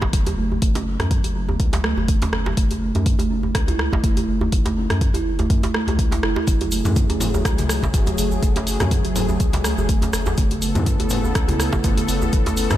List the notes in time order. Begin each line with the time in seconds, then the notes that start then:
0.02 F#1 B3, kick, djembe slap, djembe tone
0.13 kick, closed hi-hat
0.27 F#3, closed hi-hat, djembe tone
0.38 F#1 A3
0.52 djembe tone
0.62 F#1 A3, kick, closed hi-hat
0.75 C#4, closed hi-hat, djembe slap, djembe tone
1.00 F#2 F#3, cross-stick, closed hi-hat, djembe tone
1.11 F#3, kick, closed hi-hat
1.24 F#1, closed hi-hat, djembe tone
1.35 F#3
1.48 B3, djembe tone
1.60 C#2, kick, closed hi-hat
1.73 F#3, closed hi-hat, djembe slap, djembe tone
1.84 A3, cross-stick
1.97 F#1, djembe tone
2.08 A3, kick, closed hi-hat
2.22 C#4, closed hi-hat, djembe slap, djembe tone
2.33 F#1, cross-stick
2.46 F#3, djembe slap, djembe tone
2.57 F#1 A3, kick, closed hi-hat
2.71 closed hi-hat, djembe tone
2.82 A3
2.95 F#2 D#4, closed hi-hat, djembe tone
3.06 kick, closed hi-hat
3.19 F#1 A3, closed hi-hat, djembe tone
3.30 C#4
3.43 djembe tone
3.55 C#2 C#4, kick, cross-stick, closed hi-hat
3.68 E4, closed hi-hat, djembe tone
3.79 cross-stick
3.93 F#1 A3, kick, djembe slap, djembe tone
4.04 A3, kick, closed hi-hat
4.17 closed hi-hat, djembe tone
4.28 F#1 A3
4.41 D#4, djembe tone
4.52 F#1, kick, closed hi-hat
4.66 A3, closed hi-hat, djembe slap, djembe tone
4.77 C#4
4.90 F#2, cross-stick, closed hi-hat, djembe tone
5.01 C#4, kick, closed hi-hat
5.14 F#1 E4, closed hi-hat, djembe tone
5.39 A3, closed hi-hat, djembe tone
5.50 F#2 A3, kick, closed hi-hat
5.63 closed hi-hat, djembe slap, djembe tone
5.74 A3, cross-stick
5.87 C#2 A3, closed hi-hat, djembe tone
5.99 kick, closed hi-hat
6.11 E4, closed hi-hat, djembe slap, djembe tone
6.23 F#1 E4, cross-stick
6.36 djembe slap, djembe tone
6.47 F#1 F#3 A3 G#4, kick, closed hi-hat, muted conga, high conga, shaker
6.61 F#3, closed hi-hat, djembe tone
6.72 A3, open hi-hat, shaker
6.85 F#2, closed hi-hat, muted conga, high conga, djembe tone, low conga, shaker
6.96 A3, kick, closed hi-hat, high conga, shaker
7.09 F#1 C#4, closed hi-hat, djembe tone
7.20 open hi-hat, muted conga, low conga, shaker
7.34 F#3, djembe tone, shaker
7.45 C#2 F#3, kick, cross-stick, closed hi-hat, shaker
7.58 closed hi-hat, muted conga, djembe tone, high conga, shaker
7.69 F#3, cross-stick, open hi-hat, shaker
7.83 F#1 C#4, kick, djembe slap, high conga, djembe tone, shaker
7.94 kick, closed hi-hat, muted conga, low conga, shaker
8.07 F#3, closed hi-hat, djembe tone, shaker
8.18 F#1 A3, open hi-hat, high conga, shaker
8.31 djembe tone, shaker
8.42 F#1 A3, kick, closed hi-hat, muted conga, high conga, shaker
8.56 C#4, closed hi-hat, djembe slap, djembe tone
8.67 open hi-hat, shaker
8.80 F#2 F#3, cross-stick, closed hi-hat, muted conga, high conga, djembe tone, low conga, shaker
8.91 F#3, kick, closed hi-hat, high conga, shaker
9.05 F#1, closed hi-hat, djembe tone
9.16 F#3, open hi-hat, muted conga, low conga, shaker
9.29 C#4, djembe tone, shaker
9.40 C#2, kick, closed hi-hat, shaker
9.53 F#3, closed hi-hat, muted conga, djembe slap, high conga, djembe tone, shaker
9.64 A3, cross-stick, open hi-hat, shaker
9.78 F#1, djembe tone, shaker
9.89 A3, kick, closed hi-hat, muted conga, shaker
10.02 C#4, closed hi-hat, djembe slap, djembe tone, shaker
10.13 F#1, cross-stick, open hi-hat, shaker
10.26 F#3, djembe slap, djembe tone, shaker
10.37 F#1 C#3 A3 B3 A4, kick, closed hi-hat, muted conga, high conga, shaker
10.51 closed hi-hat, djembe tone
10.62 A3, open hi-hat, shaker
10.75 F#2 E4, closed hi-hat, muted conga, djembe tone, high conga, low conga, shaker
10.86 kick, closed hi-hat, high conga, shaker
11.00 F#1 A3, closed hi-hat, djembe tone
11.09 C#4, open hi-hat, muted conga, low conga, shaker
11.24 djembe tone, shaker
11.35 C#2 C#4, kick, cross-stick, closed hi-hat, shaker
11.48 E4, closed hi-hat, muted conga, djembe tone, high conga, shaker
11.60 cross-stick, open hi-hat, shaker
11.73 F#1 A3, kick, djembe slap, high conga, djembe tone, shaker
11.84 A3, kick, closed hi-hat, muted conga, low conga, shaker
11.97 closed hi-hat, djembe tone, shaker
12.08 F#1 A3, open hi-hat, high conga, shaker
12.22 E4, djembe tone, shaker
12.33 F#1, kick, closed hi-hat, muted conga, high conga, shaker
12.46 A3, closed hi-hat, djembe slap, djembe tone, shaker
12.57 C#4, open hi-hat, shaker
12.70 F#2, cross-stick, closed hi-hat, muted conga, high conga, djembe tone, low conga, shaker